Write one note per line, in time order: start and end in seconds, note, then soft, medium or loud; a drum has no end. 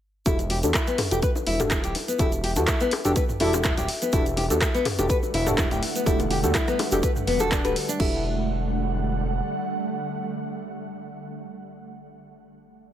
0.26 0.64 E1 loud
0.26 0.37 D4 medium
0.26 0.38 E4 medium
0.26 0.37 F#4 medium
0.26 0.37 G4 medium
0.26 0.37 A4 loud
0.26 kick loud
0.26 closed hi-hat medium
0.26 high bongo medium
0.26 shaker medium
0.39 closed hi-hat soft
0.39 low bongo medium
0.39 shaker soft
0.50 0.57 G4 medium
0.50 open hi-hat medium
0.63 0.72 E2 loud
0.63 0.69 D4 medium
0.63 0.69 F#4 medium
0.63 0.69 G4 medium
0.63 0.69 A4 loud
0.63 closed hi-hat soft
0.63 shaker medium
0.74 0.86 E4 medium
0.74 kick loud
0.74 cross-stick loud
0.74 clap medium
0.74 closed hi-hat medium
0.74 low bongo medium
0.74 shaker medium
0.87 0.97 B3 loud
0.87 closed hi-hat soft
0.87 shaker soft
0.98 mid tom medium
0.98 open hi-hat loud
0.98 high bongo loud
0.98 low bongo medium
1.11 1.21 E1 loud
1.11 1.57 D4 medium
1.11 1.57 F#4 medium
1.11 1.18 G4 medium
1.11 1.57 G4 medium
1.11 1.57 A4 medium
1.11 closed hi-hat soft
1.11 shaker medium
1.22 1.30 B4 medium
1.22 kick loud
1.22 closed hi-hat medium
1.22 shaker medium
1.35 low bongo medium
1.35 shaker soft
1.47 1.81 E1 medium
1.47 1.59 E4 loud
1.47 open hi-hat medium
1.60 1.70 D4 medium
1.60 1.70 F#4 medium
1.60 1.70 G4 medium
1.60 1.70 A4 medium
1.60 closed hi-hat soft
1.60 mid tom medium
1.60 high bongo loud
1.60 low bongo medium
1.60 shaker medium
1.71 1.83 E4 medium
1.71 kick loud
1.71 cross-stick loud
1.71 clap loud
1.71 closed hi-hat medium
1.71 shaker medium
1.84 1.93 D1 medium
1.84 1.94 G4 medium
1.84 closed hi-hat soft
1.84 shaker soft
1.95 open hi-hat loud
1.95 low bongo medium
2.08 2.18 B3 medium
2.08 closed hi-hat soft
2.08 shaker medium
2.18 2.58 E1 loud
2.18 2.27 D4 medium
2.18 2.31 E4 medium
2.18 2.27 F#4 medium
2.18 2.27 G4 medium
2.18 2.27 A4 medium
2.18 kick loud
2.18 closed hi-hat medium
2.18 high bongo medium
2.18 low bongo medium
2.18 shaker medium
2.32 closed hi-hat soft
2.32 shaker soft
2.44 2.51 G4 medium
2.44 open hi-hat medium
2.56 2.66 E2 loud
2.56 2.63 D4 medium
2.56 2.63 F#4 medium
2.56 2.63 G4 medium
2.56 2.63 A4 medium
2.56 closed hi-hat soft
2.56 low bongo loud
2.56 shaker medium
2.67 2.79 E4 medium
2.67 kick loud
2.67 cross-stick loud
2.67 clap medium
2.67 closed hi-hat medium
2.67 shaker medium
2.80 2.91 B3 loud
2.80 closed hi-hat soft
2.80 low bongo medium
2.80 shaker soft
2.91 open hi-hat medium
2.91 high bongo loud
3.05 3.14 E1 loud
3.05 3.11 D4 medium
3.05 3.11 F#4 medium
3.05 3.11 G4 medium
3.05 3.11 A4 loud
3.05 closed hi-hat soft
3.05 shaker medium
3.16 3.23 B4 medium
3.16 kick loud
3.16 closed hi-hat medium
3.16 low bongo loud
3.16 shaker medium
3.29 mid tom medium
3.29 shaker soft
3.40 3.74 E1 medium
3.40 4.10 D4 loud
3.40 3.53 E4 loud
3.40 4.10 F#4 medium
3.40 4.10 G4 medium
3.40 4.10 A4 loud
3.40 open hi-hat medium
3.40 low bongo medium
3.53 closed hi-hat soft
3.53 high bongo loud
3.53 shaker medium
3.64 3.76 E4 medium
3.64 kick loud
3.64 cross-stick loud
3.64 clap loud
3.64 closed hi-hat medium
3.64 shaker medium
3.77 3.87 D1 medium
3.77 3.88 G4 medium
3.77 closed hi-hat soft
3.77 low bongo loud
3.77 shaker soft
3.88 open hi-hat medium
4.02 4.12 B3 medium
4.02 closed hi-hat soft
4.02 low bongo medium
4.02 shaker medium
4.13 4.51 E1 loud
4.13 7.97 D3 medium
4.13 7.97 G3 medium
4.13 7.96 A3 medium
4.13 4.24 D4 medium
4.13 4.25 E4 medium
4.13 4.24 F#4 medium
4.13 4.24 G4 medium
4.13 4.24 A4 loud
4.13 7.97 F#5 medium
4.13 kick loud
4.13 closed hi-hat medium
4.13 high bongo medium
4.13 shaker medium
4.26 closed hi-hat soft
4.26 shaker soft
4.37 4.44 G4 medium
4.37 open hi-hat medium
4.37 low bongo loud
4.50 4.59 E2 loud
4.50 4.56 D4 medium
4.50 4.56 F#4 medium
4.50 4.56 G4 medium
4.50 4.56 A4 loud
4.50 closed hi-hat soft
4.50 shaker medium
4.61 4.73 E4 medium
4.61 kick loud
4.61 cross-stick loud
4.61 clap loud
4.61 closed hi-hat medium
4.61 low bongo medium
4.61 shaker medium
4.75 4.84 B3 loud
4.75 closed hi-hat soft
4.75 shaker soft
4.85 mid tom medium
4.85 open hi-hat medium
4.85 high bongo loud
4.98 5.08 E1 loud
4.98 5.44 D4 medium
4.98 5.44 F#4 medium
4.98 5.05 G4 medium
4.98 5.44 G4 medium
4.98 5.44 A4 medium
4.98 closed hi-hat soft
4.98 low bongo loud
4.98 shaker medium
5.09 5.17 B4 medium
5.09 kick loud
5.09 closed hi-hat medium
5.09 shaker medium
5.23 low bongo medium
5.23 shaker soft
5.34 5.68 E1 medium
5.34 5.46 E4 loud
5.34 open hi-hat medium
5.46 5.56 D4 medium
5.46 5.57 F#4 medium
5.46 5.57 G4 medium
5.46 5.57 A4 loud
5.46 closed hi-hat soft
5.46 mid tom medium
5.46 high bongo loud
5.46 shaker medium
5.58 5.70 E4 medium
5.58 kick loud
5.58 cross-stick loud
5.58 clap loud
5.58 closed hi-hat medium
5.58 low bongo medium
5.58 shaker medium
5.71 5.80 D1 loud
5.71 5.81 G4 medium
5.71 closed hi-hat soft
5.71 shaker soft
5.82 open hi-hat loud
5.82 low bongo medium
5.96 6.05 B3 medium
5.96 closed hi-hat soft
5.96 shaker medium
6.06 6.45 E1 loud
6.06 6.13 D4 medium
6.06 6.18 E4 medium
6.06 6.13 F#4 medium
6.06 6.13 G4 medium
6.06 6.13 A4 medium
6.06 kick loud
6.06 closed hi-hat medium
6.06 high bongo medium
6.06 shaker medium
6.20 closed hi-hat soft
6.20 low bongo loud
6.20 shaker soft
6.31 6.38 G4 medium
6.31 open hi-hat medium
6.43 6.53 E2 loud
6.43 6.50 D4 medium
6.43 6.50 F#4 medium
6.43 6.50 G4 medium
6.43 6.50 A4 medium
6.43 closed hi-hat soft
6.43 low bongo medium
6.43 shaker medium
6.55 6.67 E4 medium
6.55 kick loud
6.55 cross-stick loud
6.55 clap loud
6.55 closed hi-hat medium
6.55 shaker medium
6.68 6.78 B3 loud
6.68 cross-stick medium
6.68 closed hi-hat soft
6.68 shaker soft
6.79 open hi-hat medium
6.79 high bongo loud
6.79 low bongo loud
6.92 7.01 E1 loud
6.92 6.98 D4 medium
6.92 6.98 F#4 medium
6.92 6.98 G4 medium
6.92 6.98 A4 loud
6.92 closed hi-hat soft
6.92 shaker medium
7.03 7.10 B4 medium
7.03 kick loud
7.03 closed hi-hat medium
7.03 low bongo medium
7.03 shaker medium
7.16 mid tom medium
7.16 shaker soft
7.27 7.61 E1 medium
7.27 7.39 B3 loud
7.27 open hi-hat medium
7.40 7.46 D4 medium
7.40 7.47 F#4 medium
7.40 7.46 G4 medium
7.40 7.46 A4 loud
7.40 7.50 A4 loud
7.40 closed hi-hat soft
7.40 high bongo medium
7.40 low bongo medium
7.40 shaker medium
7.51 7.63 D4 medium
7.51 kick loud
7.51 cross-stick loud
7.51 clap loud
7.51 closed hi-hat medium
7.51 shaker medium
7.64 7.74 D1 loud
7.64 7.70 D4 medium
7.64 7.71 F#4 medium
7.64 7.71 G4 medium
7.64 7.71 A4 loud
7.64 7.75 B4 medium
7.64 closed hi-hat soft
7.64 low bongo medium
7.64 shaker soft
7.76 open hi-hat medium
7.89 7.99 D4 loud
7.89 closed hi-hat soft
7.89 shaker medium
8.00 9.41 E1 loud
8.00 11.31 D3 medium
8.00 11.30 G3 medium
8.00 11.30 A3 medium
8.00 11.30 D4 medium
8.00 8.22 E4 medium
8.00 11.30 F#4 medium
8.00 11.30 G4 medium
8.00 11.30 A4 medium
8.00 11.30 F#5 medium
8.00 kick loud
8.00 crash medium